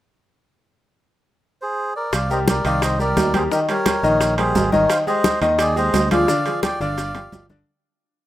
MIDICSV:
0, 0, Header, 1, 5, 480
1, 0, Start_track
1, 0, Key_signature, -3, "minor"
1, 0, Tempo, 346220
1, 1029, Time_signature, 4, 2, 24, 8
1, 11461, End_track
2, 0, Start_track
2, 0, Title_t, "Melodica"
2, 0, Program_c, 0, 22
2, 2240, Note_on_c, 0, 72, 89
2, 2257, Note_on_c, 0, 68, 65
2, 2680, Note_off_c, 0, 72, 0
2, 2689, Note_off_c, 0, 68, 0
2, 2717, Note_on_c, 0, 74, 81
2, 2731, Note_on_c, 0, 70, 59
2, 2943, Note_off_c, 0, 70, 0
2, 2959, Note_off_c, 0, 74, 0
2, 2969, Note_on_c, 0, 77, 83
2, 2983, Note_on_c, 0, 74, 70
2, 3189, Note_off_c, 0, 74, 0
2, 3205, Note_off_c, 0, 77, 0
2, 3210, Note_on_c, 0, 75, 81
2, 3226, Note_on_c, 0, 72, 59
2, 3313, Note_off_c, 0, 75, 0
2, 3325, Note_off_c, 0, 72, 0
2, 3446, Note_on_c, 0, 74, 85
2, 3462, Note_on_c, 0, 70, 64
2, 3660, Note_off_c, 0, 74, 0
2, 3669, Note_off_c, 0, 70, 0
2, 3687, Note_on_c, 0, 77, 92
2, 3706, Note_on_c, 0, 74, 74
2, 3901, Note_off_c, 0, 77, 0
2, 3911, Note_off_c, 0, 74, 0
2, 3928, Note_on_c, 0, 75, 84
2, 3946, Note_on_c, 0, 72, 69
2, 4142, Note_off_c, 0, 75, 0
2, 4151, Note_off_c, 0, 72, 0
2, 4166, Note_on_c, 0, 74, 89
2, 4184, Note_on_c, 0, 70, 73
2, 4613, Note_off_c, 0, 70, 0
2, 4650, Note_on_c, 0, 72, 80
2, 4651, Note_off_c, 0, 74, 0
2, 4667, Note_on_c, 0, 68, 56
2, 4753, Note_off_c, 0, 72, 0
2, 4767, Note_off_c, 0, 68, 0
2, 4877, Note_on_c, 0, 70, 83
2, 4895, Note_on_c, 0, 67, 66
2, 4983, Note_off_c, 0, 70, 0
2, 4997, Note_off_c, 0, 67, 0
2, 5122, Note_on_c, 0, 73, 86
2, 5139, Note_on_c, 0, 70, 71
2, 6021, Note_off_c, 0, 73, 0
2, 6030, Note_off_c, 0, 70, 0
2, 6076, Note_on_c, 0, 72, 97
2, 6092, Note_on_c, 0, 68, 74
2, 6520, Note_off_c, 0, 72, 0
2, 6528, Note_off_c, 0, 68, 0
2, 6559, Note_on_c, 0, 73, 82
2, 6578, Note_on_c, 0, 70, 67
2, 6789, Note_off_c, 0, 70, 0
2, 6794, Note_on_c, 0, 77, 97
2, 6802, Note_off_c, 0, 73, 0
2, 6817, Note_on_c, 0, 72, 79
2, 6901, Note_off_c, 0, 77, 0
2, 6919, Note_off_c, 0, 72, 0
2, 7038, Note_on_c, 0, 75, 99
2, 7059, Note_on_c, 0, 72, 80
2, 7482, Note_off_c, 0, 75, 0
2, 7493, Note_off_c, 0, 72, 0
2, 7761, Note_on_c, 0, 74, 94
2, 7779, Note_on_c, 0, 68, 72
2, 7980, Note_off_c, 0, 74, 0
2, 7990, Note_off_c, 0, 68, 0
2, 7995, Note_on_c, 0, 75, 102
2, 8014, Note_on_c, 0, 72, 80
2, 8440, Note_off_c, 0, 75, 0
2, 8450, Note_off_c, 0, 72, 0
2, 8486, Note_on_c, 0, 77, 98
2, 8503, Note_on_c, 0, 74, 76
2, 9149, Note_off_c, 0, 77, 0
2, 9158, Note_off_c, 0, 74, 0
2, 9201, Note_on_c, 0, 79, 105
2, 9215, Note_on_c, 0, 74, 83
2, 9420, Note_off_c, 0, 79, 0
2, 9428, Note_off_c, 0, 74, 0
2, 9443, Note_on_c, 0, 77, 99
2, 9460, Note_on_c, 0, 74, 77
2, 10341, Note_off_c, 0, 77, 0
2, 10349, Note_off_c, 0, 74, 0
2, 11461, End_track
3, 0, Start_track
3, 0, Title_t, "Grand piano"
3, 0, Program_c, 1, 0
3, 3193, Note_on_c, 1, 55, 72
3, 3194, Note_on_c, 1, 67, 67
3, 3200, Note_on_c, 1, 70, 63
3, 3584, Note_off_c, 1, 55, 0
3, 3585, Note_off_c, 1, 67, 0
3, 3588, Note_off_c, 1, 70, 0
3, 3670, Note_on_c, 1, 51, 93
3, 3673, Note_on_c, 1, 63, 80
3, 3677, Note_on_c, 1, 75, 89
3, 4062, Note_off_c, 1, 51, 0
3, 4064, Note_off_c, 1, 63, 0
3, 4067, Note_off_c, 1, 75, 0
3, 4151, Note_on_c, 1, 55, 66
3, 4155, Note_on_c, 1, 67, 69
3, 4161, Note_on_c, 1, 70, 69
3, 4543, Note_off_c, 1, 55, 0
3, 4546, Note_off_c, 1, 67, 0
3, 4549, Note_off_c, 1, 70, 0
3, 4631, Note_on_c, 1, 55, 78
3, 4633, Note_on_c, 1, 67, 77
3, 4639, Note_on_c, 1, 70, 70
3, 4827, Note_off_c, 1, 55, 0
3, 4828, Note_off_c, 1, 67, 0
3, 4831, Note_off_c, 1, 70, 0
3, 4872, Note_on_c, 1, 51, 71
3, 4877, Note_on_c, 1, 63, 70
3, 4882, Note_on_c, 1, 75, 72
3, 5067, Note_off_c, 1, 51, 0
3, 5070, Note_off_c, 1, 63, 0
3, 5073, Note_off_c, 1, 75, 0
3, 5117, Note_on_c, 1, 55, 72
3, 5119, Note_on_c, 1, 67, 66
3, 5124, Note_on_c, 1, 70, 64
3, 5507, Note_off_c, 1, 55, 0
3, 5509, Note_off_c, 1, 67, 0
3, 5512, Note_off_c, 1, 70, 0
3, 5590, Note_on_c, 1, 51, 89
3, 5596, Note_on_c, 1, 63, 84
3, 5599, Note_on_c, 1, 75, 93
3, 5984, Note_off_c, 1, 51, 0
3, 5987, Note_off_c, 1, 63, 0
3, 5989, Note_off_c, 1, 75, 0
3, 6064, Note_on_c, 1, 55, 74
3, 6068, Note_on_c, 1, 67, 65
3, 6076, Note_on_c, 1, 70, 69
3, 6263, Note_off_c, 1, 55, 0
3, 6266, Note_off_c, 1, 67, 0
3, 6270, Note_off_c, 1, 70, 0
3, 6308, Note_on_c, 1, 55, 68
3, 6312, Note_on_c, 1, 67, 64
3, 6316, Note_on_c, 1, 70, 68
3, 6506, Note_off_c, 1, 55, 0
3, 6508, Note_off_c, 1, 67, 0
3, 6510, Note_off_c, 1, 70, 0
3, 6546, Note_on_c, 1, 51, 89
3, 6551, Note_on_c, 1, 63, 89
3, 6555, Note_on_c, 1, 75, 89
3, 6942, Note_off_c, 1, 51, 0
3, 6945, Note_off_c, 1, 63, 0
3, 6947, Note_off_c, 1, 75, 0
3, 7024, Note_on_c, 1, 56, 71
3, 7029, Note_on_c, 1, 67, 74
3, 7034, Note_on_c, 1, 68, 76
3, 7421, Note_off_c, 1, 56, 0
3, 7424, Note_off_c, 1, 67, 0
3, 7427, Note_off_c, 1, 68, 0
3, 7507, Note_on_c, 1, 51, 89
3, 7510, Note_on_c, 1, 63, 98
3, 7514, Note_on_c, 1, 75, 85
3, 7903, Note_off_c, 1, 51, 0
3, 7905, Note_off_c, 1, 63, 0
3, 7907, Note_off_c, 1, 75, 0
3, 7988, Note_on_c, 1, 56, 75
3, 7991, Note_on_c, 1, 67, 70
3, 7994, Note_on_c, 1, 68, 69
3, 8384, Note_off_c, 1, 56, 0
3, 8385, Note_off_c, 1, 67, 0
3, 8387, Note_off_c, 1, 68, 0
3, 8476, Note_on_c, 1, 53, 76
3, 8477, Note_on_c, 1, 65, 82
3, 8485, Note_on_c, 1, 68, 76
3, 8671, Note_off_c, 1, 53, 0
3, 8672, Note_off_c, 1, 65, 0
3, 8676, Note_off_c, 1, 68, 0
3, 8716, Note_on_c, 1, 50, 77
3, 8716, Note_on_c, 1, 62, 74
3, 8720, Note_on_c, 1, 74, 70
3, 8911, Note_off_c, 1, 50, 0
3, 8911, Note_off_c, 1, 62, 0
3, 8914, Note_off_c, 1, 74, 0
3, 8956, Note_on_c, 1, 53, 72
3, 8960, Note_on_c, 1, 65, 64
3, 8965, Note_on_c, 1, 68, 77
3, 9348, Note_off_c, 1, 53, 0
3, 9350, Note_off_c, 1, 65, 0
3, 9353, Note_off_c, 1, 68, 0
3, 9437, Note_on_c, 1, 50, 87
3, 9439, Note_on_c, 1, 62, 94
3, 9444, Note_on_c, 1, 74, 91
3, 9828, Note_off_c, 1, 50, 0
3, 9830, Note_off_c, 1, 62, 0
3, 9832, Note_off_c, 1, 74, 0
3, 9915, Note_on_c, 1, 53, 67
3, 9918, Note_on_c, 1, 65, 70
3, 9924, Note_on_c, 1, 67, 65
3, 10110, Note_off_c, 1, 53, 0
3, 10112, Note_off_c, 1, 65, 0
3, 10115, Note_off_c, 1, 67, 0
3, 10154, Note_on_c, 1, 53, 62
3, 10157, Note_on_c, 1, 65, 66
3, 10160, Note_on_c, 1, 67, 64
3, 10350, Note_off_c, 1, 53, 0
3, 10351, Note_off_c, 1, 65, 0
3, 10353, Note_off_c, 1, 67, 0
3, 10395, Note_on_c, 1, 50, 84
3, 10396, Note_on_c, 1, 62, 89
3, 10402, Note_on_c, 1, 74, 84
3, 10590, Note_off_c, 1, 50, 0
3, 10591, Note_off_c, 1, 62, 0
3, 10594, Note_off_c, 1, 74, 0
3, 11461, End_track
4, 0, Start_track
4, 0, Title_t, "Fingered electric bass"
4, 0, Program_c, 2, 33
4, 2951, Note_on_c, 2, 36, 86
4, 3619, Note_off_c, 2, 36, 0
4, 3669, Note_on_c, 2, 36, 95
4, 4338, Note_off_c, 2, 36, 0
4, 4388, Note_on_c, 2, 39, 89
4, 4812, Note_off_c, 2, 39, 0
4, 5589, Note_on_c, 2, 34, 98
4, 6259, Note_off_c, 2, 34, 0
4, 6309, Note_on_c, 2, 32, 90
4, 6734, Note_off_c, 2, 32, 0
4, 7506, Note_on_c, 2, 39, 100
4, 8179, Note_off_c, 2, 39, 0
4, 8231, Note_on_c, 2, 38, 91
4, 8656, Note_off_c, 2, 38, 0
4, 9430, Note_on_c, 2, 31, 98
4, 10100, Note_off_c, 2, 31, 0
4, 10152, Note_on_c, 2, 31, 93
4, 10575, Note_off_c, 2, 31, 0
4, 11461, End_track
5, 0, Start_track
5, 0, Title_t, "Drums"
5, 2950, Note_on_c, 9, 65, 86
5, 2951, Note_on_c, 9, 60, 70
5, 2952, Note_on_c, 9, 63, 31
5, 2952, Note_on_c, 9, 70, 67
5, 3089, Note_off_c, 9, 60, 0
5, 3089, Note_off_c, 9, 65, 0
5, 3090, Note_off_c, 9, 63, 0
5, 3091, Note_off_c, 9, 70, 0
5, 3191, Note_on_c, 9, 63, 35
5, 3198, Note_on_c, 9, 70, 30
5, 3329, Note_off_c, 9, 63, 0
5, 3337, Note_off_c, 9, 70, 0
5, 3431, Note_on_c, 9, 60, 59
5, 3433, Note_on_c, 9, 63, 97
5, 3434, Note_on_c, 9, 65, 69
5, 3434, Note_on_c, 9, 66, 60
5, 3441, Note_on_c, 9, 70, 66
5, 3569, Note_off_c, 9, 60, 0
5, 3572, Note_off_c, 9, 63, 0
5, 3573, Note_off_c, 9, 65, 0
5, 3573, Note_off_c, 9, 66, 0
5, 3579, Note_off_c, 9, 70, 0
5, 3670, Note_on_c, 9, 65, 70
5, 3671, Note_on_c, 9, 60, 32
5, 3676, Note_on_c, 9, 63, 35
5, 3680, Note_on_c, 9, 70, 29
5, 3809, Note_off_c, 9, 60, 0
5, 3809, Note_off_c, 9, 65, 0
5, 3814, Note_off_c, 9, 63, 0
5, 3819, Note_off_c, 9, 70, 0
5, 3910, Note_on_c, 9, 60, 65
5, 3913, Note_on_c, 9, 65, 84
5, 3915, Note_on_c, 9, 63, 34
5, 3916, Note_on_c, 9, 70, 70
5, 4049, Note_off_c, 9, 60, 0
5, 4051, Note_off_c, 9, 65, 0
5, 4053, Note_off_c, 9, 63, 0
5, 4055, Note_off_c, 9, 70, 0
5, 4151, Note_on_c, 9, 63, 33
5, 4154, Note_on_c, 9, 60, 31
5, 4159, Note_on_c, 9, 70, 28
5, 4290, Note_off_c, 9, 63, 0
5, 4292, Note_off_c, 9, 60, 0
5, 4298, Note_off_c, 9, 70, 0
5, 4392, Note_on_c, 9, 63, 83
5, 4393, Note_on_c, 9, 65, 63
5, 4393, Note_on_c, 9, 66, 80
5, 4395, Note_on_c, 9, 60, 35
5, 4395, Note_on_c, 9, 61, 80
5, 4396, Note_on_c, 9, 70, 64
5, 4531, Note_off_c, 9, 63, 0
5, 4532, Note_off_c, 9, 65, 0
5, 4532, Note_off_c, 9, 66, 0
5, 4533, Note_off_c, 9, 60, 0
5, 4533, Note_off_c, 9, 61, 0
5, 4535, Note_off_c, 9, 70, 0
5, 4630, Note_on_c, 9, 63, 80
5, 4630, Note_on_c, 9, 65, 91
5, 4633, Note_on_c, 9, 60, 33
5, 4635, Note_on_c, 9, 70, 29
5, 4769, Note_off_c, 9, 63, 0
5, 4769, Note_off_c, 9, 65, 0
5, 4772, Note_off_c, 9, 60, 0
5, 4774, Note_off_c, 9, 70, 0
5, 4872, Note_on_c, 9, 63, 36
5, 4874, Note_on_c, 9, 60, 67
5, 4877, Note_on_c, 9, 70, 65
5, 5010, Note_off_c, 9, 63, 0
5, 5013, Note_off_c, 9, 60, 0
5, 5015, Note_off_c, 9, 70, 0
5, 5111, Note_on_c, 9, 63, 37
5, 5111, Note_on_c, 9, 65, 69
5, 5118, Note_on_c, 9, 70, 30
5, 5249, Note_off_c, 9, 63, 0
5, 5250, Note_off_c, 9, 65, 0
5, 5257, Note_off_c, 9, 70, 0
5, 5347, Note_on_c, 9, 65, 97
5, 5347, Note_on_c, 9, 66, 58
5, 5352, Note_on_c, 9, 60, 61
5, 5352, Note_on_c, 9, 63, 101
5, 5361, Note_on_c, 9, 70, 62
5, 5486, Note_off_c, 9, 65, 0
5, 5486, Note_off_c, 9, 66, 0
5, 5490, Note_off_c, 9, 60, 0
5, 5490, Note_off_c, 9, 63, 0
5, 5500, Note_off_c, 9, 70, 0
5, 5587, Note_on_c, 9, 60, 34
5, 5593, Note_on_c, 9, 63, 36
5, 5602, Note_on_c, 9, 70, 32
5, 5726, Note_off_c, 9, 60, 0
5, 5732, Note_off_c, 9, 63, 0
5, 5741, Note_off_c, 9, 70, 0
5, 5831, Note_on_c, 9, 60, 58
5, 5832, Note_on_c, 9, 65, 64
5, 5835, Note_on_c, 9, 63, 32
5, 5836, Note_on_c, 9, 70, 69
5, 5970, Note_off_c, 9, 60, 0
5, 5971, Note_off_c, 9, 65, 0
5, 5973, Note_off_c, 9, 63, 0
5, 5975, Note_off_c, 9, 70, 0
5, 6070, Note_on_c, 9, 60, 34
5, 6072, Note_on_c, 9, 65, 88
5, 6074, Note_on_c, 9, 63, 36
5, 6081, Note_on_c, 9, 70, 25
5, 6209, Note_off_c, 9, 60, 0
5, 6211, Note_off_c, 9, 65, 0
5, 6213, Note_off_c, 9, 63, 0
5, 6220, Note_off_c, 9, 70, 0
5, 6310, Note_on_c, 9, 66, 81
5, 6312, Note_on_c, 9, 60, 34
5, 6312, Note_on_c, 9, 61, 79
5, 6312, Note_on_c, 9, 63, 86
5, 6314, Note_on_c, 9, 70, 64
5, 6449, Note_off_c, 9, 66, 0
5, 6451, Note_off_c, 9, 60, 0
5, 6451, Note_off_c, 9, 61, 0
5, 6451, Note_off_c, 9, 63, 0
5, 6453, Note_off_c, 9, 70, 0
5, 6549, Note_on_c, 9, 63, 80
5, 6550, Note_on_c, 9, 60, 33
5, 6562, Note_on_c, 9, 70, 31
5, 6688, Note_off_c, 9, 63, 0
5, 6689, Note_off_c, 9, 60, 0
5, 6700, Note_off_c, 9, 70, 0
5, 6788, Note_on_c, 9, 65, 90
5, 6789, Note_on_c, 9, 60, 66
5, 6789, Note_on_c, 9, 63, 36
5, 6795, Note_on_c, 9, 70, 68
5, 6926, Note_off_c, 9, 65, 0
5, 6927, Note_off_c, 9, 60, 0
5, 6928, Note_off_c, 9, 63, 0
5, 6934, Note_off_c, 9, 70, 0
5, 7031, Note_on_c, 9, 63, 34
5, 7038, Note_on_c, 9, 70, 28
5, 7170, Note_off_c, 9, 63, 0
5, 7177, Note_off_c, 9, 70, 0
5, 7266, Note_on_c, 9, 60, 58
5, 7269, Note_on_c, 9, 63, 96
5, 7269, Note_on_c, 9, 65, 72
5, 7269, Note_on_c, 9, 66, 56
5, 7270, Note_on_c, 9, 70, 70
5, 7405, Note_off_c, 9, 60, 0
5, 7407, Note_off_c, 9, 65, 0
5, 7407, Note_off_c, 9, 66, 0
5, 7408, Note_off_c, 9, 63, 0
5, 7409, Note_off_c, 9, 70, 0
5, 7508, Note_on_c, 9, 60, 33
5, 7509, Note_on_c, 9, 65, 76
5, 7511, Note_on_c, 9, 63, 36
5, 7518, Note_on_c, 9, 70, 30
5, 7647, Note_off_c, 9, 60, 0
5, 7648, Note_off_c, 9, 65, 0
5, 7649, Note_off_c, 9, 63, 0
5, 7656, Note_off_c, 9, 70, 0
5, 7744, Note_on_c, 9, 60, 61
5, 7747, Note_on_c, 9, 65, 99
5, 7749, Note_on_c, 9, 63, 33
5, 7749, Note_on_c, 9, 70, 68
5, 7883, Note_off_c, 9, 60, 0
5, 7886, Note_off_c, 9, 65, 0
5, 7887, Note_off_c, 9, 63, 0
5, 7888, Note_off_c, 9, 70, 0
5, 7986, Note_on_c, 9, 60, 31
5, 7990, Note_on_c, 9, 63, 31
5, 7999, Note_on_c, 9, 70, 29
5, 8125, Note_off_c, 9, 60, 0
5, 8129, Note_off_c, 9, 63, 0
5, 8138, Note_off_c, 9, 70, 0
5, 8232, Note_on_c, 9, 60, 31
5, 8232, Note_on_c, 9, 61, 84
5, 8232, Note_on_c, 9, 65, 68
5, 8232, Note_on_c, 9, 66, 86
5, 8233, Note_on_c, 9, 63, 83
5, 8233, Note_on_c, 9, 70, 70
5, 8370, Note_off_c, 9, 60, 0
5, 8370, Note_off_c, 9, 61, 0
5, 8371, Note_off_c, 9, 63, 0
5, 8371, Note_off_c, 9, 65, 0
5, 8371, Note_off_c, 9, 66, 0
5, 8372, Note_off_c, 9, 70, 0
5, 8472, Note_on_c, 9, 60, 32
5, 8473, Note_on_c, 9, 65, 85
5, 8475, Note_on_c, 9, 63, 81
5, 8476, Note_on_c, 9, 70, 31
5, 8611, Note_off_c, 9, 60, 0
5, 8612, Note_off_c, 9, 65, 0
5, 8614, Note_off_c, 9, 63, 0
5, 8615, Note_off_c, 9, 70, 0
5, 8710, Note_on_c, 9, 60, 69
5, 8717, Note_on_c, 9, 63, 35
5, 8717, Note_on_c, 9, 70, 69
5, 8848, Note_off_c, 9, 60, 0
5, 8855, Note_off_c, 9, 70, 0
5, 8856, Note_off_c, 9, 63, 0
5, 8951, Note_on_c, 9, 65, 66
5, 8953, Note_on_c, 9, 63, 33
5, 8957, Note_on_c, 9, 70, 27
5, 9090, Note_off_c, 9, 65, 0
5, 9092, Note_off_c, 9, 63, 0
5, 9095, Note_off_c, 9, 70, 0
5, 9191, Note_on_c, 9, 65, 91
5, 9191, Note_on_c, 9, 66, 59
5, 9192, Note_on_c, 9, 60, 54
5, 9192, Note_on_c, 9, 63, 98
5, 9193, Note_on_c, 9, 70, 64
5, 9330, Note_off_c, 9, 63, 0
5, 9330, Note_off_c, 9, 65, 0
5, 9330, Note_off_c, 9, 66, 0
5, 9331, Note_off_c, 9, 60, 0
5, 9332, Note_off_c, 9, 70, 0
5, 9433, Note_on_c, 9, 60, 36
5, 9435, Note_on_c, 9, 63, 38
5, 9440, Note_on_c, 9, 70, 30
5, 9572, Note_off_c, 9, 60, 0
5, 9573, Note_off_c, 9, 63, 0
5, 9579, Note_off_c, 9, 70, 0
5, 9673, Note_on_c, 9, 65, 68
5, 9676, Note_on_c, 9, 63, 36
5, 9676, Note_on_c, 9, 70, 68
5, 9678, Note_on_c, 9, 60, 78
5, 9811, Note_off_c, 9, 65, 0
5, 9814, Note_off_c, 9, 63, 0
5, 9814, Note_off_c, 9, 70, 0
5, 9816, Note_off_c, 9, 60, 0
5, 9908, Note_on_c, 9, 65, 86
5, 9914, Note_on_c, 9, 61, 97
5, 9917, Note_on_c, 9, 63, 35
5, 9920, Note_on_c, 9, 70, 27
5, 10046, Note_off_c, 9, 65, 0
5, 10053, Note_off_c, 9, 61, 0
5, 10055, Note_off_c, 9, 63, 0
5, 10058, Note_off_c, 9, 70, 0
5, 10153, Note_on_c, 9, 66, 80
5, 10155, Note_on_c, 9, 63, 83
5, 10159, Note_on_c, 9, 61, 78
5, 10160, Note_on_c, 9, 70, 68
5, 10291, Note_off_c, 9, 66, 0
5, 10293, Note_off_c, 9, 63, 0
5, 10298, Note_off_c, 9, 61, 0
5, 10298, Note_off_c, 9, 70, 0
5, 10391, Note_on_c, 9, 63, 79
5, 10395, Note_on_c, 9, 61, 72
5, 10397, Note_on_c, 9, 70, 27
5, 10530, Note_off_c, 9, 63, 0
5, 10533, Note_off_c, 9, 61, 0
5, 10536, Note_off_c, 9, 70, 0
5, 11461, End_track
0, 0, End_of_file